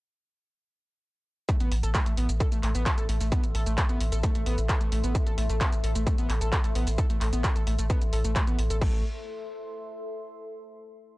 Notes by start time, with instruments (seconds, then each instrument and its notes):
1.49 analog synth lead A3, ambient pad A4, kick, closed hi-hat, shaker
1.60 sub bass A1, analog synth lead B3, closed hi-hat, shaker
1.67 sub bass A1, ambient pad E5, open hi-hat
1.83 sub bass A1, analog synth lead A4, ambient pad C6, closed hi-hat, shaker
1.94 analog synth lead A3, kick, clap, closed hi-hat, shaker
2.06 sub bass A1, analog synth lead A3, closed hi-hat, shaker
2.17 sub bass A1, analog synth lead B3, open hi-hat
2.29 sub bass A1, closed hi-hat, shaker
2.40 analog synth lead A4, kick, closed hi-hat, shaker
2.52 sub bass A1, analog synth lead A3, closed hi-hat, shaker
2.63 sub bass A1, analog synth lead A3, clap, open hi-hat
2.75 sub bass A1, analog synth lead B3, closed hi-hat, shaker
2.86 kick, clap, closed hi-hat, shaker
2.98 sub bass A1, analog synth lead A4, closed hi-hat, shaker
3.09 sub bass A1, analog synth lead A3, open hi-hat
3.20 sub bass A1, analog synth lead A3, open hi-hat, shaker
3.32 analog synth lead B3, kick, closed hi-hat, shaker
3.43 sub bass A1, closed hi-hat, shaker
3.55 sub bass A1, analog synth lead A4, open hi-hat
3.66 sub bass A1, analog synth lead A3, closed hi-hat, shaker
3.78 analog synth lead A3, kick, clap, closed hi-hat, shaker
3.89 sub bass A1, analog synth lead B3, closed hi-hat, shaker
4.00 sub bass A1, open hi-hat
4.12 sub bass A1, analog synth lead A4, closed hi-hat, shaker
4.23 analog synth lead A3, kick, closed hi-hat, shaker
4.35 sub bass A1, analog synth lead A3, closed hi-hat, shaker
4.46 sub bass A1, analog synth lead B3, open hi-hat
4.58 sub bass A1, closed hi-hat, shaker
4.69 analog synth lead A4, kick, clap, closed hi-hat, shaker
4.81 sub bass A1, analog synth lead A3, closed hi-hat, shaker
4.92 sub bass A1, analog synth lead A3, open hi-hat
5.04 sub bass A1, analog synth lead B3, closed hi-hat, shaker
5.15 kick, closed hi-hat, shaker
5.27 sub bass A1, analog synth lead A4, closed hi-hat, shaker
5.38 sub bass A1, analog synth lead A3, open hi-hat
5.49 sub bass A1, analog synth lead A3, closed hi-hat, shaker
5.61 analog synth lead B3, kick, clap, closed hi-hat, shaker
5.72 sub bass A1, closed hi-hat, shaker
5.84 sub bass A1, analog synth lead A4, open hi-hat
5.95 sub bass A1, analog synth lead A3, closed hi-hat, shaker
6.07 analog synth lead A3, kick, closed hi-hat, shaker
6.18 sub bass A1, analog synth lead B3, closed hi-hat, shaker
6.29 sub bass A1, clap, open hi-hat
6.41 sub bass A1, analog synth lead A4, closed hi-hat, shaker
6.52 analog synth lead A3, kick, clap, closed hi-hat, shaker
6.64 sub bass A1, analog synth lead A3, closed hi-hat, shaker
6.75 sub bass A1, analog synth lead B3, open hi-hat
6.87 sub bass A1, open hi-hat, shaker
6.98 analog synth lead A4, kick, closed hi-hat, shaker
7.10 sub bass A1, analog synth lead A3, closed hi-hat, shaker
7.21 sub bass A1, analog synth lead A3, clap, open hi-hat
7.33 sub bass A1, analog synth lead B3, closed hi-hat, shaker
7.44 kick, clap, closed hi-hat, shaker
7.56 sub bass A1, analog synth lead A4, closed hi-hat, shaker
7.67 sub bass A1, analog synth lead A3, open hi-hat
7.79 sub bass A1, analog synth lead A3, closed hi-hat, shaker
7.90 analog synth lead B3, kick, closed hi-hat, shaker
8.01 sub bass A1, closed hi-hat, shaker
8.13 sub bass A1, analog synth lead A4, open hi-hat
8.24 sub bass A1, analog synth lead A3, closed hi-hat, shaker
8.36 analog synth lead A3, kick, clap, closed hi-hat, shaker
8.47 sub bass A1, analog synth lead B3, closed hi-hat, shaker
8.58 sub bass A1, open hi-hat
8.70 sub bass A1, analog synth lead A4, closed hi-hat, shaker
8.81 sub bass A1, analog synth lead A3, ambient pad A4, kick, crash
8.88 ambient pad E5
8.95 ambient pad C6